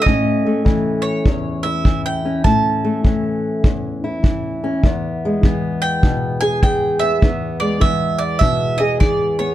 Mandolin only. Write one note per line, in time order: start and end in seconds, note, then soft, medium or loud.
0.02 1.01 D#5 loud
1.02 1.66 C#5 medium
1.63 2.01 E5 medium
2.06 2.43 G5 medium
2.44 3.00 A5 medium
5.82 6.40 G5 medium
6.41 6.63 G#5 loud
6.63 7.03 G5 medium
6.99 7.59 E5 medium
7.60 7.82 D5 medium
7.81 8.22 E5 medium
8.18 8.41 D5 medium
8.39 8.81 E5 medium
8.78 9.00 D#5 medium
9.00 9.39 D5 medium
9.39 9.54 C#5 medium